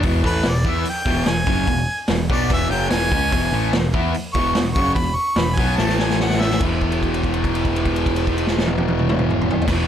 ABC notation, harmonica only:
X:1
M:4/4
L:1/8
Q:1/4=146
K:E
V:1 name="Harmonica"
z B =d e =g2 ^g2- | g2 z =d e =g ^g2- | g2 z3 c' z c' | b c' b g a g f e |
z8 | z8 |]